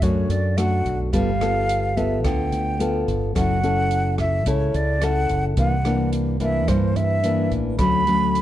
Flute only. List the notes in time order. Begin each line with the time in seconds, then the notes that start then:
0.03 C#5
0.31 D5
0.57 F#5
1.14 F5
1.97 E5
2.24 G5
3.37 F#5
4.20 E5
4.48 C#5
4.76 D5
5.04 F#5
5.59 F#5
6.43 E5
6.68 C5
6.96 E5
7.79 B5